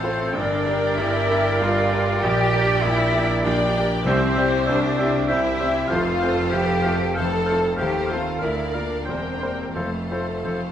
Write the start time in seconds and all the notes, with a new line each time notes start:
Already playing: A1 A2 A3 C4 F4 A4 C5 F5
0.03 C4 F4 C5
0.33 G1 G2 G3 D4 A#4 D5 G5
0.39 D4
0.65 D4 G4 A#4
0.95 G1 G2 E4 E5
0.99 E4
1.30 D4 G4 A#4
1.59 G1 G2 F4 F5
1.64 F4
1.92 D4 G4 A#4
2.19 A#1 G4 D5 G5
2.24 A#1 A#2
2.53 D4 G4 A#4
2.81 A#2 E4 E5
2.86 A#1
3.15 D4 G4 A#4
3.43 A#1 A#2 D4 G4 D5 G5
3.78 D4 G4 A#4
4.04 C2 C3 G3 C4 G4 C5 E5
4.35 G3 C4 E4 G4 C5 E5
4.66 C2 C3 G3 D4 C5 D5 E5
4.97 G3 C4 E4 G4 C5 E5
5.27 G3 E4 G4 C5 E5
5.32 C2 C3 E4
5.58 G3 C5 E5
5.63 C4 E4 G4
5.88 F2 A3 F4 A4 C5 F5
5.93 F1 F2
6.20 A3 C4 F4 C5 F5
6.24 A4
6.50 F1 F2 A3 G4 C5 F5 G5
6.82 A3 C5 F5
6.86 C4 F4 A4
7.14 A3 A4 C5 F5 A5
7.18 F1 F2 A4
7.45 A3 C5 F5
7.51 C4 F4 A4
7.77 D#2 A3 G4 A4 C5 F5 G5
7.82 D#2 D#3
8.06 A3 F4 C5 F5
8.11 C4 F4 A4 F5
8.39 D2 A#3 E4 A#4 D5 F5
8.43 D2 D3 E4 E5
8.73 A#3 D4 F4 A#4 D5 F5
8.78 D4
9.05 E1 E2 G3 C4 A#4 C5 G5
9.10 C4
9.15 D4
9.24 C4
9.33 D4
9.40 G3 A#3 C4 G4 A#4 C5
9.74 F1 F2 F3 A3 A4 C5 F5
10.10 F3 A3 F4 A4 C5
10.44 F1 F2 F3 A4 C5